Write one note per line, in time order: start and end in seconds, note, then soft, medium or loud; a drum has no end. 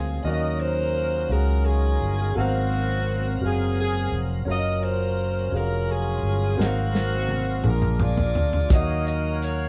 0.00 0.21 D2 medium
0.00 0.25 C#3 soft
0.00 0.25 G#3 medium
0.00 0.14 C4 medium
0.00 0.19 C4 medium
0.00 0.23 C#4 medium
0.00 0.20 F4 medium
0.00 0.25 F4 medium
0.00 0.20 G#4 medium
0.00 0.15 A#4 medium
0.00 0.25 C5 medium
0.23 1.26 D#2 medium
0.23 1.26 D#3 medium
0.23 2.31 F#3 medium
0.23 1.21 F#3 medium
0.23 1.19 C#4 medium
0.23 2.31 C#4 soft
0.23 2.31 D#4 soft
0.23 0.57 F#4 medium
0.23 2.31 A#4 soft
0.23 1.25 A#4 medium
0.23 0.31 D5 medium
0.23 0.59 D#5 loud
0.23 1.20 F5 medium
0.33 1.25 D#5 medium
0.58 1.60 F4 medium
0.58 1.60 F#4 medium
0.58 1.30 C5 medium
1.27 1.96 C#2 medium
1.27 2.26 F#3 soft
1.27 2.25 C#4 soft
1.27 1.65 A#4 medium
1.27 2.26 F5 soft
1.32 2.27 G#4 medium
1.64 2.31 C#4 medium
1.64 2.31 F4 medium
1.64 2.36 G#4 medium
2.01 2.33 G1 medium
2.34 3.38 G#1 medium
2.34 3.38 G#2 medium
2.34 4.43 F#3 medium
2.34 3.38 A#3 medium
2.34 2.41 B3 medium
2.34 4.43 C4 medium
2.34 3.38 C4 medium
2.34 3.32 F#4 medium
2.34 2.41 A4 soft
2.34 3.32 A#4 medium
2.34 4.42 F5 soft
2.34 3.33 F5 medium
2.39 3.34 C4 medium
2.39 3.39 F#4 medium
2.39 4.45 A#4 medium
3.40 4.08 F#1 medium
3.40 4.37 C4 medium
3.40 4.38 F#4 soft
3.40 4.38 A#4 soft
3.45 3.76 G#4 medium
3.45 4.39 F5 medium
3.80 4.19 G#4 medium
4.12 4.44 F1 medium
4.45 5.48 F#1 medium
4.45 5.43 F#3 medium
4.45 6.55 F#3 medium
4.45 5.42 C#4 medium
4.45 6.55 C#4 medium
4.45 6.55 F4 soft
4.45 5.43 A#4 medium
4.45 6.55 A#4 medium
4.45 5.49 A#4 medium
4.49 4.82 D#5 loud
4.49 5.44 F5 medium
4.83 5.84 F4 medium
4.83 5.54 C5 medium
5.51 6.19 F1 medium
5.51 6.49 F#3 medium
5.51 6.48 C#4 medium
5.51 5.60 G#4 soft
5.51 6.50 F5 medium
5.56 5.90 A#4 medium
5.56 6.53 A#4 soft
5.89 6.55 C#4 medium
5.89 6.55 F4 medium
5.89 6.60 G#4 medium
6.23 6.56 G1 medium
6.56 7.61 G#1 medium
6.56 7.60 G#2 medium
6.56 7.64 F#3 medium
6.56 7.54 C4 medium
6.56 7.64 C4 soft
6.56 7.54 F#4 medium
6.56 7.60 A#4 medium
6.56 7.55 A#4 medium
6.56 7.63 F5 soft
6.56 snare medium
6.61 7.62 A#3 medium
6.61 7.61 C4 medium
6.61 7.67 F#4 loud
6.61 6.66 D#5 medium
6.67 7.59 F5 medium
6.95 snare medium
7.29 high tom medium
7.61 8.31 A#1 medium
7.61 8.67 A#2 medium
7.61 8.69 G#3 medium
7.61 7.70 C#4 soft
7.61 8.60 D4 medium
7.61 8.69 F4 soft
7.61 8.60 G#4 soft
7.61 8.69 A#4 medium
7.61 8.61 A#4 medium
7.61 mid tom medium
7.66 8.67 D4 medium
7.66 8.72 D4 soft
7.66 8.00 F4 medium
7.66 8.62 F5 medium
7.70 8.00 A#4 medium
7.82 mid tom medium
8.00 8.67 F4 medium
8.00 8.67 G#4 medium
8.00 8.72 D5 loud
8.00 mid tom medium
8.17 floor tom medium
8.35 8.68 D2 medium
8.35 floor tom medium
8.53 floor tom medium
8.68 9.69 D#2 medium
8.68 9.69 D#3 medium
8.68 8.76 F3 soft
8.68 9.66 D#4 medium
8.68 9.69 D#4 soft
8.68 9.67 F#4 medium
8.68 9.69 F#4 medium
8.68 9.69 A#4 medium
8.68 9.69 C#5 medium
8.68 9.67 C#5 medium
8.68 9.69 F5 soft
8.68 kick loud
8.68 closed hi-hat medium
8.73 9.69 F#3 medium
8.73 9.07 D#5 loud
8.73 8.78 E5 medium
8.79 9.69 F5 medium
9.07 9.40 D#5 medium
9.07 closed hi-hat soft
9.42 9.69 C#5 medium
9.42 closed hi-hat medium